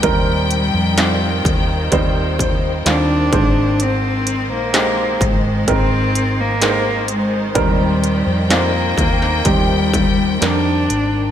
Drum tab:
HH |x-x-x-x-x-x-x-x-|x-x-x-x-x-x-x-x-|x-x-x-x-x-x-x-x-|
SD |----o-------o---|----o-------o---|----o--o----o---|
BD |o-----o-o-o---o-|------o-o-------|o-----o-o-o-----|